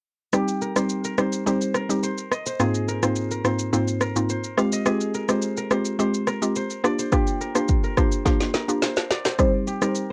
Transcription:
0.33 G3 C4 D#4 G4, cross-stick, shaker
0.48 shaker
0.62 A#4, shaker
0.76 G3 C4 D#4 G4 C5, cross-stick, shaker
0.89 shaker
1.04 A#4, shaker
1.18 G3 C4 D#4 G4 C5, cross-stick, shaker
1.32 shaker
1.46 G3 C4 D#4 G4 C5, shaker
1.61 shaker
1.74 A#4, cross-stick, shaker
1.89 G3 C4 D#4 G4, shaker
2.03 C5, shaker
2.18 shaker
2.31 D#5, cross-stick, shaker
2.46 C5, shaker
2.59 G#2 A#3 C4 D#4 F4 G#4, cross-stick, shaker
2.74 shaker
2.88 A#4, shaker
3.02 G#2 A#3 C4 D#4 F4 C5, cross-stick, shaker
3.16 shaker
3.31 A#4, shaker
3.44 G#2 A#3 C4 D#4 F4 C5, cross-stick, shaker
3.59 shaker
3.73 G#2 A#3 C4 D#4 F4 C5, shaker
3.88 shaker
4.01 A#4, cross-stick, shaker
4.16 G#2 A#3 C4 D#4 F4, shaker
4.29 C5, shaker
4.44 shaker
4.57 G#3 C4 F4 G4 F5, cross-stick, shaker
4.72 D#5, shaker
4.86 G#3 C4 F4 G4 G#4, cross-stick, shaker
5.01 shaker
5.14 A#4, shaker
5.29 G#3 C4 F4 G4 C5, cross-stick, shaker
5.42 shaker
5.57 A#4, shaker
5.71 G#3 C4 F4 G4 C5, cross-stick, shaker
5.85 shaker
5.99 G#3 C4 F4 G4 C5, shaker
6.14 shaker
6.27 A#4, cross-stick, shaker
6.42 G#3 C4 F4 G4, shaker
6.56 C5, shaker
6.70 shaker
6.84 A#3 D4 F4 G4 D5, cross-stick, shaker
6.99 C5, shaker
7.12 A#3 D4 F4 G4, kick, cross-stick, shaker
7.27 shaker
7.41 A#4, shaker
7.55 A#3 D4 F4 G4 C5, cross-stick, shaker
7.68 kick, shaker
7.83 A#4, shaker
7.97 A#3 D4 F4 G4 C5, kick, cross-stick, shaker
8.12 shaker
8.25 A#3 D4 F4 G4 C5, kick, snare, shaker
8.40 snare, shaker
8.54 A#4, snare, shaker
8.68 A#3 D4 F4 G4, shaker
8.82 C5, snare, shaker
8.97 snare, shaker
9.11 D5, snare, shaker
9.25 C5, snare, shaker
9.39 G3 C4 D#4 G4 C5, kick, cross-stick, shaker
9.67 G4, shaker
9.82 G3 C4 D#4 G4 A#4 C5, cross-stick, shaker
9.95 shaker

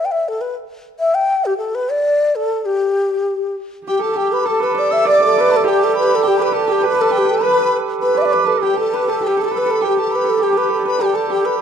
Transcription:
0.05 G5
0.11 E5
0.28 A4
0.41 B4
1.00 E5
1.14 G5
1.45 G4
1.57 A4
1.75 B4
1.91 D5
2.35 A4
2.65 G4
3.85 G4 G5
3.99 A4 A5
4.14 G4 A4 G5
4.32 B4 B5
4.45 A4 A5
4.60 B4 B5
4.75 D5 D6
4.79 D5
4.91 E5 E6
5.05 D5 D6
5.20 A4
5.25 A4
5.38 B4
5.48 A4 A5
5.56 A4
5.64 G4 G5
5.68 G4
5.80 A5
5.84 A4
5.94 B5
5.99 B4
6.15 A4
6.23 G4 G5
6.28 G4
6.38 B4 B5
6.42 B4
6.52 A4 B4 A5
6.57 A4
6.64 G4 A5
6.68 G5
6.72 G4
6.81 B4 B5
6.88 B4
6.95 A4 A5
7.01 A4
7.10 G4 G5
7.18 G4
7.25 A4
7.31 A4
7.41 B4 B5
8.01 B4 B5
8.15 D5 D6
8.22 D5 E5
8.27 D6
8.32 B4 B5
8.43 A4 B4 A5
8.47 A4
8.61 G4 G5
8.74 A4 B4 A5
8.79 A4
8.94 B4
9.07 A4 A5
9.21 G4 G5
9.27 G4
9.37 A4 A5
9.42 G4 A4 A5
9.48 A4 B4 B5
9.58 B4
9.66 A4
9.71 A4
9.81 G4 G5
9.86 G4
9.97 A4 A5
10.02 A4
10.12 B4 B5
10.24 A4
10.29 A4
10.39 G4 G5
10.43 G4
10.53 B4
10.57 B4 B5
10.69 A4
10.73 A4
10.79 D5
10.85 B4 B5
10.99 G4 G5
11.13 A4 A5
11.30 G4 G5
11.45 B4 B5

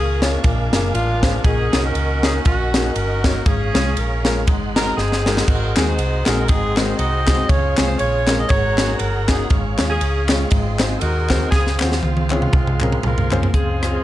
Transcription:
Already playing: C#2 A#2 C#4 F4 G#4 A#4 F5 G#5 C#6
0.21 G#3 A#3 C#4 D4 F4 G#4 C#5, snare, ride
0.42 A#1 A#2 A#4 F5 D6, kick, ride
0.72 F#1 A#3 D4 F4 G#4 A#4, snare, ride
0.94 A1 G#3 D4 F4, ride
1.23 A#3 D4 F4 G#4 C5, kick, snare, ride
1.44 A#1 A#2 C#4 D#4 G#4 D#5 F#5 C#6, kick, ride
1.73 C2 A#3 C#4 D#4 F#4 A#4, snare, ride
1.85 C#4 F#4 A#4
1.95 C#2, ride
2.23 A#3 C#4 D#4 F#4 G#4 A#4, snare, ride
2.45 A#1 C#4 D#4 F#4, kick, ride
2.74 A#3 C#4 D#4 F#4 G#4, snare, ride
2.95 G1 C#4 F#4 A#4, ride
3.24 A#3 C#4 D#4 F#4 C#5, kick, snare, ride
3.45 G#1 G#2 C#4 F4 G#4 C#5 F5, kick, ride
3.74 C2 G#3 C#4 F4 G#4 C#5, snare, ride
3.97 A#1 A#4, ride
4.25 G#3 C#4 F4 G#4 A#4, snare, ride
4.46 G#1 G#2 D#5 F#5 C6, kick, ride
4.76 G#3 C4 D#4 F#4 G#4 A#4, snare, ride
4.97 G1 C4 D#4 G#4, snare
5.12 snare
5.26 G#3 C4 D#4 F#4 A#4, snare
5.37 snare
5.47 G#1 D#4 F#4 A#4, kick, crash
5.76 D#2 G#3 C4 D#4 F#4 G#4, snare, clap, ride
5.87 D#4 F#4 C5
5.99 C2, ride
6.26 A#1 G#3 C4 D#4 F#4 G#4 A#4, snare, clap, ride
6.48 G#1 G#2 C4 D#4 G#4, kick, ride
6.76 G#3 C4 D#4 F#4 A#4 C5, snare, clap, ride
6.97 C2 F#4 C5 D#5, ride
7.27 G#3 C4 D#4 F#4 G#4, kick, snare, clap, ride
7.48 C#2 C#3 F4 G#4 C#5 F5, kick, ride
7.77 C2 G#3 C4 C#4 F4 G#4, snare, clap, ride
7.88 C5
7.98 A#1 F4 G#4 C#5, ride
8.27 G#3 C4 C#4 F4 A#4, snare, clap, ride
8.38 D#5
8.49 G#1 G#2 F#4 G#4 A#4 C#5 F#5 A#5, kick, ride
8.78 A#3 C#4 D#4 F#4 G#4, snare, clap, ride
8.99 G1 A#4, ride
9.28 A#3 C#4 D#4 F4 F#4 G#4, kick, snare, clap, ride
9.50 G#1 G#2 C#5 F5 C#6, kick, ride
9.78 D#2 G#3 C#4 F4 G#4 C#5, snare, clap, ride
9.90 C#4 F4 G#4
10.01 C#2, ride
10.28 G#3 C4 C#4 F4 G#4 C#5, snare, clap, ride
10.50 G#1 G#2 D#5 C6, kick, ride
10.79 C4 D#4 F#4 G#4 C5, snare, clap, ride
11.00 D#2 D#4 F#4 A#4, ride
11.29 C4 D#4 F#4 G#4 C5, kick, snare, clap, ride
11.51 C#2 C#3 C4 F4 G#4 C5 F5, kick, snare
11.67 snare
11.79 D#2 C4 C#4 F4 F#4 G#4 C5, snare, clap
11.92 snare
12.00 C#2 F4, high tom
12.17 high tom
12.30 G#3 C4 C#4 F4 G#4 C#5, clap, high tom
12.42 mid tom
12.53 C2, kick, mid tom
12.67 mid tom
12.80 C4 C#4 F4 G#4 A#4, clap, mid tom
12.92 mid tom
13.03 C2 F4 A#4, mid tom
13.18 floor tom
13.31 C4 C#4 F4 G#4 C5, clap, floor tom
13.43 floor tom
13.53 C#2 C#3 G#3 C4 F4 G#4 C5 F5 C6, kick, closed hi-hat
13.83 C4 C#4 F4 G#4, cross-stick, closed hi-hat
13.94 C4 F4 G#4

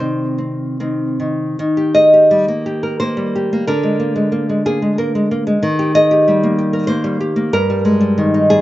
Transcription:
Already playing: C3 C5
0.00 D#3 C4
0.38 C4
0.80 D#3 C4
1.20 D#3
1.59 D#3
1.77 G4
1.95 G#4 D#5
2.14 G4
2.31 G3
2.48 A#3
2.66 G4
2.83 A#4
3.00 A#3 C5
3.17 G3
3.36 G4
3.53 A#3
3.67 D3 A#4
3.83 G#3
4.00 A#3
4.16 G#3
4.32 A#3
4.49 G#3
4.66 A#3 G#4
4.82 G#3
4.98 A#3 A#4
5.15 G#3
5.31 A#3
5.47 G#3
5.63 D#3
5.79 G4
5.95 G#4 D#5
6.11 G4
6.28 G3
6.43 A#3
6.59 G4
6.73 A#4
6.87 A#3 C5
7.04 G3
7.21 G4
7.36 A#3
7.53 G2 A#4
7.70 G3
7.85 G#3
8.01 G3
8.18 D#3
8.34 D#4
8.50 G3 G#4

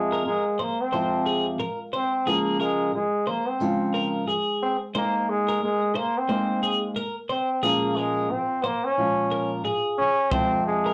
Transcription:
Already playing: F2 C3 F3 G#3 C4 F4
0.12 A#4
0.24 F2 C3 F3 G#3
0.58 F2 C3 F3 A#3 C5
0.81 C4
0.92 F2 C3 F3 G#3 C4 F4 C5
1.26 G#4
1.58 F2 C3 F3 A#4
1.93 C4 C5
2.26 C#3 F3 G#3 A#3 C#4 F4 G#4
2.60 G#3 A#4
2.93 C#3 F3 G#3
3.26 C#3 F3 A#3 C5
3.48 C4
3.60 C#3 F3 G#3 F4
3.94 A#4
4.27 C#3 F3 G#4
4.62 C4
4.94 G#3 A#3 D#4 G#4 C5
5.29 G#3
5.49 A#4
5.61 G#3 A#3
5.94 G#3 A#3 C5
6.18 C4
6.28 G#3 A#3 D#4 G#4 C5
6.63 G#4
6.94 G#3 A#3 A#4
7.29 C4 C5
7.62 A#2 F3 G#3 A#3 C#4 F4 G#4
7.97 G#3 A#4
8.30 A#2 F3 C4
8.63 A#2 F3 A#3 C5
8.84 C#4
8.97 A#2 F3 G#3 C#4 F4
9.32 A#4
9.64 A#2 F3 G#4
9.98 A#2 F3 C#4
10.31 F2 C3 F3 G#3 C4 F4 C5, kick
10.66 G#3
10.86 A#4

